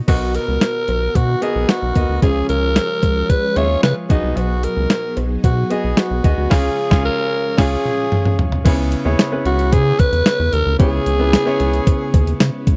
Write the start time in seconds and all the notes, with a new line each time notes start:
Already playing: B3 D#4 F#4 D#5
0.08 B1 B2 D#3 B3 F#4 A#4 D#5, kick, closed hi-hat, crash, cowbell
0.35 A#4, closed hi-hat
0.48 C#2
0.61 snare, closed hi-hat, cowbell
0.88 B1, closed hi-hat, cowbell
1.15 B2 F#4, kick, closed hi-hat, cowbell
1.42 B3 F#4 G#4 A#4 D#5, closed hi-hat
1.56 B1
1.69 F#4, snare, closed hi-hat, cowbell
1.83 B1
1.95 D#2 B3 F#4 A#4 D#5, kick, closed hi-hat
2.09 D2
2.22 C#2 C#3 F3 G#3 C#4 F4 G#4 F5, kick, closed hi-hat, cowbell
2.49 C#2 A#4, closed hi-hat
2.76 snare, closed hi-hat, cowbell
3.02 C#2, kick, closed hi-hat, cowbell
3.29 B4, kick, closed hi-hat, cowbell
3.56 D#2 C#4 F4 G#4 C#5 E5, closed hi-hat
3.64 F5
3.83 C#3 B4, snare, closed hi-hat, cowbell
4.09 B1 B2 F#3 B3 D#4 F#4 G#4 D#5, kick, closed hi-hat
4.23 C2
4.37 B1 F#4, closed hi-hat, cowbell
4.63 A#4, closed hi-hat
4.77 C#2
4.90 snare, closed hi-hat, cowbell
5.17 B1, closed hi-hat, cowbell
5.44 B2 F#4, kick, closed hi-hat, cowbell
5.70 B3 F#4 G#4 D#5, closed hi-hat
5.84 B1
5.97 F#4, snare, closed hi-hat, cowbell
6.11 B1
6.24 D#2 B3 F#4 G#4 D#5, kick, closed hi-hat
6.38 D2
6.50 C#2 C#3 F3 G#3 C#4 F4 G#4 F5, kick, snare, crash
6.90 C#2 C#3 C#4 F4 G#4 F5, kick, snare
7.05 A#4
7.57 C#2 C#4 F4 G#4, kick, snare, crash
7.85 mid tom
8.12 mid tom
8.25 mid tom
8.39 floor tom
8.52 floor tom
8.65 C#2 C#3 G#3 B3 C#4 E4 G#4 C#5, kick, closed hi-hat, crash, cowbell
8.92 closed hi-hat
9.05 D#2 B3 C#4 E4 G#4 C#5
9.19 snare, closed hi-hat, tambourine, cowbell
9.32 B3 C#4 E4 G#4 B4
9.45 C#2 F#4, closed hi-hat
9.59 closed hi-hat
9.72 C#3 G#4, kick, closed hi-hat, cowbell
9.99 B4, kick, closed hi-hat, cowbell
10.12 E2, closed hi-hat
10.26 snare, closed hi-hat, tambourine, cowbell
10.40 E2
10.53 D#2 A#4, closed hi-hat
10.66 D2
10.79 C#2 C#3 B3 C#4 E4 G#4 C#5, kick, closed hi-hat, cowbell
11.06 C#2, closed hi-hat
11.19 B3 C#4 E4 G#4 B4
11.33 snare, closed hi-hat, tambourine, cowbell
11.46 B3 C#4 E4 G#4 C#5
11.60 C#2, closed hi-hat
11.73 closed hi-hat
11.87 kick, closed hi-hat, cowbell
12.14 D#2, kick, closed hi-hat, cowbell
12.27 closed hi-hat
12.40 C#3, snare, closed hi-hat, tambourine, cowbell
12.67 C#2, kick, closed hi-hat